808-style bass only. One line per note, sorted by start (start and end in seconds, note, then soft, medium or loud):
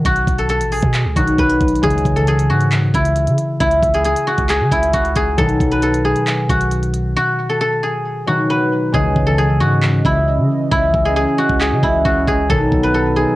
0.05 0.26 B1 loud
0.27 0.62 B1 loud
0.61 0.82 A1 loud
0.83 1.06 B2 loud
1.05 1.16 C#2 medium
1.16 1.37 B1 loud
1.38 1.60 B1 loud
1.61 1.82 B1 loud
1.83 2.04 C#2 loud
2.05 2.51 C#2 loud
2.49 2.92 G#2 loud
2.94 3.29 C#2 loud
3.27 3.38 C#3 loud
3.61 3.82 C#2 loud
3.83 4.15 C#2 loud
4.38 4.62 C#2 loud
4.61 4.71 C#3 medium
4.72 4.93 C#2 loud
4.94 5.15 C#2 loud
5.16 5.37 C#2 loud
5.38 5.60 B1 loud
5.61 6.14 B1 loud
6.49 7.16 B1 loud
8.94 9.15 C#2 loud
9.16 9.62 C#2 loud
9.61 10.03 G#2 loud
10.05 10.40 C#2 loud
10.38 10.49 C#3 loud
10.72 10.93 C#2 loud
10.94 11.26 C#2 loud
11.49 11.73 C#2 loud
11.72 11.82 C#3 loud
11.83 12.04 C#2 loud
12.05 12.26 C#2 loud
12.27 12.49 C#2 loud
12.49 12.71 B1 loud
12.72 13.25 B1 loud